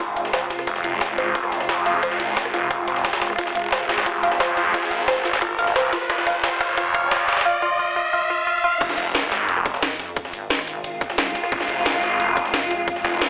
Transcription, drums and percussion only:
0.16 closed hi-hat, ride
0.25 snare
0.33 kick, snare, closed hi-hat, ride
0.50 snare, closed hi-hat, ride
0.59 cross-stick, snare
0.67 kick, closed hi-hat, ride
0.76 snare
0.84 closed hi-hat, ride
1.01 kick, snare, closed hi-hat, ride
1.18 closed hi-hat, ride
1.35 kick, closed hi-hat, ride
1.44 cross-stick
1.52 snare, closed hi-hat, ride
1.60 snare
1.69 kick, snare, closed hi-hat, ride
1.86 snare, closed hi-hat, ride
2.03 kick, closed hi-hat, ride
2.11 snare
2.20 closed hi-hat, ride
2.37 kick, snare, closed hi-hat, ride
2.45 cross-stick, ride
2.54 open hi-hat, ride
2.71 kick, closed hi-hat, ride
2.88 closed hi-hat, ride
2.96 snare
3.04 kick, snare, closed hi-hat, ride
3.13 snare, ride
3.21 snare, closed hi-hat, ride
3.30 cross-stick
3.38 kick, closed hi-hat, ride
3.47 snare
3.55 closed hi-hat, ride
3.72 kick, snare, closed hi-hat, ride
3.89 snare, closed hi-hat, ride
3.98 snare, ride
4.06 kick, closed hi-hat, ride
4.23 snare, closed hi-hat, ride
4.32 snare
4.40 kick, snare, closed hi-hat, ride
4.57 snare, closed hi-hat, ride
4.74 kick, closed hi-hat, ride
4.82 snare
4.91 closed hi-hat, ride
5.08 kick, snare, closed hi-hat, ride
5.16 ride
5.25 open hi-hat, ride
5.33 snare, ride
5.42 kick, closed hi-hat, ride
5.59 closed hi-hat, ride
5.67 snare
5.76 kick, snare, closed hi-hat, ride
5.93 snare, closed hi-hat, ride
6.01 snare
6.10 kick, closed hi-hat, ride
6.18 snare
6.27 kick, closed hi-hat, ride
6.43 kick, snare, closed hi-hat, ride
6.60 kick, closed hi-hat, ride
6.77 kick, closed hi-hat, ride
6.94 kick, closed hi-hat
7.11 kick, snare, closed hi-hat, ride
7.28 kick, snare, closed hi-hat, ride
7.32 snare, ride
7.37 snare, ride
7.41 snare, ride
8.81 kick, closed hi-hat, crash, ride
8.89 snare
8.98 closed hi-hat, ride
9.15 snare, closed hi-hat, ride
9.23 cross-stick
9.32 snare, closed hi-hat, ride
9.49 closed hi-hat, ride
9.57 cross-stick
9.66 kick, snare, closed hi-hat, ride
9.74 snare
9.82 snare, closed hi-hat, ride
9.99 snare, closed hi-hat, ride
10.16 kick, closed hi-hat, ride
10.25 snare
10.33 closed hi-hat, ride
10.50 snare, closed hi-hat, ride
10.59 cross-stick, ride
10.67 open hi-hat, ride
10.84 closed hi-hat, ride
11.01 kick, closed hi-hat, ride
11.10 snare
11.18 snare, closed hi-hat, ride
11.27 snare
11.35 snare, closed hi-hat, ride
11.44 cross-stick, snare
11.52 kick, closed hi-hat, ride
11.60 snare
11.69 closed hi-hat, ride
11.86 snare, closed hi-hat, ride
11.94 cross-stick
12.03 closed hi-hat, ride
12.20 closed hi-hat, ride
12.28 cross-stick
12.37 kick, snare, closed hi-hat, ride
12.45 snare
12.54 snare, closed hi-hat, ride
12.71 snare, closed hi-hat, ride
12.88 kick, closed hi-hat, ride
12.96 snare
13.05 closed hi-hat, ride
13.21 snare, closed hi-hat, ride

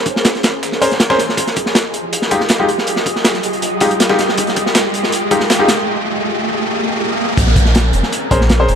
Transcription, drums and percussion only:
0.06 kick, closed hi-hat
0.16 snare
0.25 snare, closed hi-hat
0.35 snare, closed hi-hat
0.43 snare, closed hi-hat
0.63 snare, closed hi-hat
0.72 snare
0.82 closed hi-hat, open hi-hat
0.91 snare, closed hi-hat
1.00 snare, closed hi-hat
1.10 kick, snare
1.18 snare, closed hi-hat
1.29 snare
1.37 kick, closed hi-hat
1.47 snare, closed hi-hat
1.56 kick, closed hi-hat
1.66 snare
1.75 snare, closed hi-hat
1.94 closed hi-hat
2.13 closed hi-hat
2.22 snare
2.31 kick, snare, closed hi-hat
2.40 snare
2.49 snare, closed hi-hat
2.69 closed hi-hat
2.78 snare
2.87 closed hi-hat
2.96 snare
3.06 kick, closed hi-hat
3.16 snare
3.25 snare, closed hi-hat
3.34 snare, closed hi-hat
3.43 closed hi-hat
3.53 closed hi-hat
3.62 closed hi-hat
3.80 kick, closed hi-hat, open hi-hat
3.91 closed hi-hat
4.00 snare, closed hi-hat
4.09 kick, snare
4.19 snare, closed hi-hat
4.29 snare
4.38 kick, closed hi-hat
4.47 snare, closed hi-hat
4.56 kick, closed hi-hat
4.66 snare
4.75 snare, closed hi-hat
4.94 closed hi-hat
5.03 snare
5.12 closed hi-hat
5.31 kick, closed hi-hat
5.40 snare
5.50 snare, closed hi-hat
5.68 snare, closed hi-hat
7.38 kick, closed hi-hat
7.47 snare
7.56 kick, closed hi-hat
7.65 snare
7.75 snare, closed hi-hat
7.93 closed hi-hat
8.03 snare
8.12 closed hi-hat
8.31 kick, closed hi-hat
8.41 snare
8.49 snare, closed hi-hat
8.69 closed hi-hat

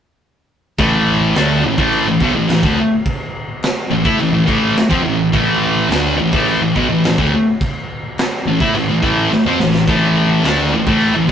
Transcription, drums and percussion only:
0.78 kick, crash
1.35 snare, crash
1.78 kick
1.92 crash
2.20 kick
2.49 snare, crash
2.63 kick
3.06 kick, crash
3.63 snare, crash
4.05 kick
4.20 crash
4.48 kick
4.76 snare, crash
4.91 kick
5.33 kick, crash
5.91 snare, crash
6.33 kick
6.48 crash
6.76 kick
7.04 snare, crash
7.18 kick
7.61 kick, crash
8.18 snare, crash
8.60 kick
8.75 crash
9.03 kick
9.32 snare
9.60 snare
9.74 snare
9.88 kick, crash
10.44 snare, crash
10.87 kick
11.01 crash

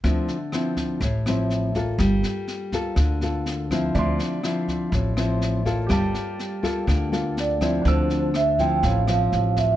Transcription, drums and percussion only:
0.04 kick, snare
0.28 snare
0.52 cross-stick, snare
0.77 kick, snare
1.01 kick, snare
1.26 cross-stick, snare
1.50 snare
1.74 kick, snare
1.99 kick, cross-stick, snare
2.23 snare
2.48 snare
2.72 kick, snare
2.96 kick, cross-stick, snare
3.21 snare
3.46 snare
3.70 kick, cross-stick, snare
3.95 kick, snare
4.19 snare
4.43 cross-stick, snare
4.68 kick, snare
4.92 kick, snare
5.17 cross-stick, snare
5.41 snare
5.66 kick, snare
5.90 kick, cross-stick, snare
6.14 snare
6.39 snare
6.63 kick, snare
6.88 kick, cross-stick, snare
7.13 snare
7.37 snare
7.61 kick, cross-stick, snare
7.85 kick, snare
8.10 snare
8.34 cross-stick, snare
8.59 kick, snare
8.83 kick, snare
9.07 cross-stick, snare
9.32 snare
9.56 kick, snare

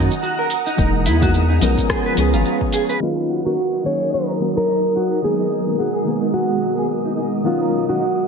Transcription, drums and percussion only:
0.11 shaker
0.23 shaker
0.50 open hi-hat, shaker
0.67 shaker
0.78 kick, shaker
1.06 open hi-hat, shaker
1.22 kick, shaker
1.34 shaker
1.62 open hi-hat, shaker
1.78 kick, shaker
1.90 kick, cross-stick, shaker
2.17 open hi-hat, shaker
2.33 shaker
2.45 shaker
2.61 kick
2.73 open hi-hat, shaker
2.89 shaker

